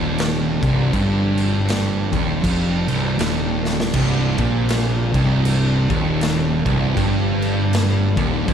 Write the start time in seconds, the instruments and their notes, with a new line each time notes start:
Already playing: picked electric bass D#1, distorted electric guitar D#2, tonewheel organ C3 G3 D4
0.18 snare, crash
0.62 picked electric bass C1, distorted electric guitar C2, kick, crash
0.93 picked electric bass G1, distorted electric guitar G2, kick, crash
1.38 crash
1.69 snare, crash
2.12 picked electric bass D#1, distorted electric guitar D#2, kick, crash
2.43 picked electric bass F1, distorted electric guitar F2, kick, crash
2.88 picked electric bass C1, distorted electric guitar C2, crash
3.17 picked electric bass D#1, distorted electric guitar D#2, snare, crash
3.65 snare
3.80 snare
3.94 picked electric bass C1, distorted electric guitar C2, kick, crash
4.38 picked electric bass A#1, distorted electric guitar A#2, kick, crash
4.69 snare, crash
5.13 picked electric bass C1, distorted electric guitar C2, kick, crash
5.45 crash
5.89 picked electric bass D#1, distorted electric guitar D#2, kick, crash
6.21 snare, crash
6.65 picked electric bass C1, distorted electric guitar C2, kick, crash
6.96 picked electric bass G1, distorted electric guitar G2, kick, crash
7.42 crash
7.73 snare, crash
8.16 picked electric bass D#1, distorted electric guitar D#2, kick, crash
8.47 picked electric bass F1, distorted electric guitar F2, kick, crash